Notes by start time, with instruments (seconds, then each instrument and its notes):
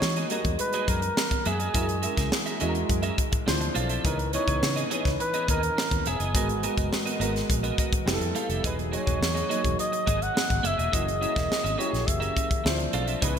Already playing: grand piano G#3 D#4 F#4 G#4, flugelhorn C#5
0.02 fingered electric bass E3, snare
0.16 clean electric guitar A#3 F#4 G#4 D#5, closed hi-hat
0.30 grand piano G3 D#4 F#4 A#4, clean electric guitar A#3 F#4 G#4 D#5, closed hi-hat
0.36 grand piano G#3
0.44 fingered electric bass E2, muted clean electric guitar stroke, kick, closed hi-hat
0.59 flugelhorn B4, muted clean electric guitar stroke, closed hi-hat
0.73 clean electric guitar A#3 F#4 G#4 D#5, closed hi-hat
0.87 fingered electric bass F#2, clean electric guitar A#3 F#4 G#4 D#5, flugelhorn A#4, kick, closed hi-hat
1.02 muted clean electric guitar stroke, closed hi-hat
1.17 muted clean electric guitar stroke, snare
1.31 muted clean electric guitar stroke, kick, closed hi-hat
1.45 fingered electric bass F#2, clean electric guitar A#3 F#4 G#4 E5, flugelhorn G#4, closed hi-hat
1.59 clean electric guitar A#3 F#4 G#4 D#5, closed hi-hat
1.74 fingered electric bass F#2, grand piano G#3 E4 F#4 A#4, clean electric guitar C#4 G#4 A#4 E5, kick, closed hi-hat
1.88 muted clean electric guitar stroke, closed hi-hat
2.02 grand piano G#3 E4 F#4 A#4, clean electric guitar C#4 G#4 A#4 E5, closed hi-hat
2.16 fingered electric bass C#2, clean electric guitar C#4 G#4 A#4 E5, kick, snare, closed hi-hat
2.32 muted clean electric guitar stroke, snare
2.46 clean electric guitar C#4 G#4 A#4 E5, closed hi-hat
2.60 fingered electric bass E2, grand piano G#3 E4 F#4 G#4, clean electric guitar C#4 G#4 A#4 E5, closed hi-hat
2.68 grand piano A#4
2.75 muted clean electric guitar stroke, closed hi-hat
2.89 fingered electric bass F#2, muted clean electric guitar stroke, kick, closed hi-hat
3.03 clean electric guitar C#4 G#4 A#4 E5, closed hi-hat
3.17 muted clean electric guitar stroke, kick, closed hi-hat
3.32 muted clean electric guitar stroke, kick, closed hi-hat
3.46 fingered electric bass D2, grand piano F3 D4 E4 C5, muted clean electric guitar stroke, snare
3.60 muted clean electric guitar stroke, closed hi-hat
3.74 fingered electric bass B1, clean electric guitar C4 F4 A4 F5, closed hi-hat
3.89 clean electric guitar C4 F4 A4 E5, closed hi-hat
4.04 fingered electric bass C#2, grand piano E3 C#4 D#4 B4, clean electric guitar B3 E4 G#4 D#5, flugelhorn A#4, kick, closed hi-hat
4.19 muted clean electric guitar stroke, closed hi-hat
4.33 grand piano E3 C#4 D#4 B4, clean electric guitar B3 E4 G#4 D#5, flugelhorn C#5, closed hi-hat
4.47 fingered electric bass C#2, clean electric guitar B3 E4 G#4 D#5, kick, closed hi-hat
4.62 fingered electric bass C#3, muted clean electric guitar stroke, snare
4.76 clean electric guitar B3 E4 G#4 D#5, closed hi-hat
4.90 grand piano E3 C#4 D#4 B4, clean electric guitar B3 E4 G#4 D#5, closed hi-hat
5.05 fingered electric bass C#2, muted clean electric guitar stroke, kick, snare, closed hi-hat
5.20 flugelhorn B4, muted clean electric guitar stroke, closed hi-hat
5.34 clean electric guitar B3 E4 G#4 D#5, closed hi-hat
5.48 fingered electric bass D#2, clean electric guitar B3 E4 G#4 D#5, flugelhorn A#4, kick, closed hi-hat
5.63 closed hi-hat
5.77 muted clean electric guitar stroke, snare
5.91 fingered electric bass D#2, muted clean electric guitar stroke, kick, closed hi-hat
6.06 fingered electric bass E1, clean electric guitar B3 E4 G#4 E5, flugelhorn G#4, closed hi-hat
6.20 fingered electric bass F#1, clean electric guitar B3 E4 G#4 D#5, closed hi-hat
6.34 fingered electric bass G#1, grand piano G#3 B3 F#4 A#4, clean electric guitar B3 F#4 A#4 D#5, kick, closed hi-hat
6.49 muted clean electric guitar stroke, closed hi-hat
6.63 grand piano G#3 B3 F#4 A#4, clean electric guitar B3 F#4 A#4 D#5, closed hi-hat
6.77 fingered electric bass F#1, clean electric guitar B3 F#4 A#4 D#5, kick, closed hi-hat
6.92 muted clean electric guitar stroke, snare
7.06 clean electric guitar B3 F#4 A#4 D#5, closed hi-hat
7.19 fingered electric bass G#1, grand piano G#3 B3 F#4 A#4, clean electric guitar B3 F#4 A#4 D#5, closed hi-hat
7.34 muted clean electric guitar stroke, snare, closed hi-hat
7.49 fingered electric bass A#1, muted clean electric guitar stroke, kick, closed hi-hat
7.63 clean electric guitar B3 F#4 A#4 D#5, closed hi-hat
7.78 clean electric guitar B3 F#4 A#4 D#5, kick, closed hi-hat
7.93 kick, closed hi-hat
8.05 fingered electric bass F1, grand piano G3 B3 E4 G4, muted clean electric guitar stroke, snare
8.13 grand piano A4
8.20 fingered electric bass F2, muted clean electric guitar stroke, closed hi-hat
8.35 clean electric guitar B3 G4 A4 F5, closed hi-hat
8.49 fingered electric bass F1, clean electric guitar B3 G4 A4 E5, closed hi-hat
8.63 fingered electric bass E1, grand piano F#3 A#3 D#4 G#4, clean electric guitar A#3 F#4 G#4 D#5, flugelhorn B4, kick, closed hi-hat
8.77 muted clean electric guitar stroke, closed hi-hat
8.92 grand piano F#3 A#3 D#4 G#4, clean electric guitar A#3 F#4 G#4 D#5, flugelhorn C#5, closed hi-hat
9.06 fingered electric bass E1, clean electric guitar A#3 F#4 G#4 D#5, kick, closed hi-hat
9.21 fingered electric bass E2, muted clean electric guitar stroke, snare
9.34 clean electric guitar A#3 F#4 G#4 D#5, closed hi-hat
9.49 grand piano F#3 A#3 D#4 G#4, clean electric guitar A#3 F#4 G#4 D#5, closed hi-hat
9.64 fingered electric bass E1, muted clean electric guitar stroke, kick, closed hi-hat
9.79 flugelhorn D#5, closed hi-hat
9.92 muted clean electric guitar stroke, closed hi-hat
10.07 fingered electric bass G#1, clean electric guitar A#3 F#4 G#4 D#5, kick, closed hi-hat
10.21 flugelhorn F#5, muted clean electric guitar stroke, closed hi-hat
10.35 muted clean electric guitar stroke, snare
10.50 fingered electric bass G#1, muted clean electric guitar stroke, kick, closed hi-hat
10.63 fingered electric bass F#1, clean electric guitar A#3 F#4 G#4 E5, flugelhorn E5, closed hi-hat
10.78 fingered electric bass E1, clean electric guitar A#3 F#4 G#4 D#5, closed hi-hat
10.92 fingered electric bass F#1, grand piano F#3 A#3 E4 G#4, clean electric guitar C#4 G#4 A#4 E5, flugelhorn D#5, kick, closed hi-hat
11.07 muted clean electric guitar stroke, closed hi-hat
11.20 grand piano F#3 A#3 E4 G#4, clean electric guitar C#4 G#4 A#4 E5, closed hi-hat
11.35 fingered electric bass E1, clean electric guitar C#4 G#4 A#4 E5, kick, snare, closed hi-hat
11.49 muted clean electric guitar stroke, snare
11.64 fingered electric bass G#1, clean electric guitar C#4 G#4 A#4 E5, closed hi-hat
11.78 grand piano F#3 A#3 E4 G4, clean electric guitar C#4 G#4 A#4 E5, flugelhorn C#5, closed hi-hat
11.87 grand piano G#4
11.92 fingered electric bass A#1, muted clean electric guitar stroke, snare, closed hi-hat
12.06 fingered electric bass F#1, flugelhorn E5, muted clean electric guitar stroke, kick, closed hi-hat
12.20 clean electric guitar C#4 G#4 A#4 E5, closed hi-hat
12.36 clean electric guitar C#4 G#4 A#4 E5, kick, closed hi-hat
12.49 muted clean electric guitar stroke, kick, closed hi-hat
12.64 fingered electric bass D2, grand piano F3 D4 E4 C5, muted clean electric guitar stroke, snare
12.78 muted clean electric guitar stroke, closed hi-hat
12.93 fingered electric bass B1, clean electric guitar C4 F4 A4 F5, closed hi-hat
13.07 clean electric guitar C4 F4 A4 E5, closed hi-hat
13.21 fingered electric bass C#2, grand piano E3 C#4 D#4 B4, clean electric guitar B3 E4 G#4 D#5, flugelhorn B4, kick, closed hi-hat